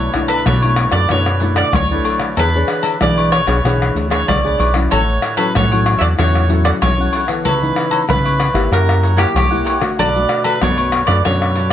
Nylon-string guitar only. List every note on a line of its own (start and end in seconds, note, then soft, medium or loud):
0.00 0.43 B2 medium
0.00 0.10 E4 medium
0.14 0.57 A3 medium
0.14 0.57 D4 medium
0.14 0.57 E4 medium
0.46 1.07 F#3 medium
0.64 1.05 A3 medium
0.64 1.05 D4 medium
0.64 1.06 E4 medium
1.10 1.70 B2 medium
1.10 1.29 A3 medium
1.10 1.29 D4 medium
1.10 1.29 E4 medium
1.41 1.84 A3 medium
1.41 1.84 D4 medium
1.41 1.84 E4 medium
1.75 2.34 F#3 medium
1.91 2.33 A3 medium
1.91 2.33 D4 medium
1.91 2.33 E4 medium
2.38 2.98 E3 medium
2.38 2.49 D4 medium
2.38 2.49 G#4 medium
2.38 2.49 C#5 medium
2.55 2.97 D4 medium
2.55 2.97 G#4 medium
2.55 2.97 C#5 medium
3.02 3.62 B2 medium
3.02 3.44 D4 medium
3.02 3.44 G#4 medium
3.48 3.59 D4 medium
3.48 3.59 G#4 medium
3.48 3.59 C#5 medium
3.66 4.25 E3 medium
3.66 4.07 D4 medium
3.66 4.08 G#4 medium
3.66 4.08 C#5 medium
4.11 4.38 D4 medium
4.11 4.38 G#4 medium
4.11 4.38 C#5 medium
4.28 4.88 B2 medium
4.44 4.70 D4 medium
4.44 4.71 G#4 medium
4.44 4.71 C#5 medium
4.74 5.01 F#3 medium
4.74 5.02 C#4 medium
4.74 5.02 E4 medium
4.92 5.52 A2 medium
5.37 5.65 F#3 medium
5.37 5.65 C#4 medium
5.37 5.65 E4 medium
5.56 6.16 E3 medium
5.72 6.14 F#3 medium
5.72 6.14 C#4 medium
5.72 6.14 E4 medium
6.18 6.78 A2 medium
6.18 6.45 F#3 medium
6.18 6.45 C#4 medium
6.18 6.45 E4 medium
6.49 6.92 F#3 medium
6.49 6.92 C#4 medium
6.49 6.92 E4 medium
6.82 7.26 E3 medium
6.97 7.24 F#3 medium
6.97 7.24 C#4 medium
6.97 7.24 E4 medium
7.28 7.60 E3 medium
7.28 7.61 B3 medium
7.44 8.05 C#3 medium
7.62 8.04 E3 medium
7.62 8.04 B3 medium
7.62 8.04 D#4 medium
8.09 8.69 G#2 medium
8.09 8.51 E3 soft
8.09 8.51 B3 medium
8.09 8.52 D#4 medium
8.54 9.13 A#3 medium
8.54 9.14 E4 medium
8.54 9.14 G4 medium
8.72 9.32 F#3 medium
9.17 9.45 A#3 medium
9.17 9.45 E4 medium
9.17 9.45 G4 medium
9.51 9.78 A#3 medium
9.51 9.78 E4 medium
9.51 9.78 G4 medium
9.81 10.09 A3 medium
9.81 10.09 D4 medium
9.81 10.09 F#4 medium
10.00 10.59 B2 medium
10.16 10.58 A3 medium
10.16 10.58 D4 medium
10.16 10.58 F#4 medium
10.62 11.22 F#2 medium
10.62 10.92 A3 medium
10.62 10.92 D4 medium
10.62 10.92 F#4 medium
11.08 11.19 A3 medium
11.08 11.20 D4 medium
11.08 11.20 F#4 medium
11.25 11.73 B2 medium
11.25 11.55 A3 medium
11.25 11.56 D4 medium
11.25 11.56 F#4 medium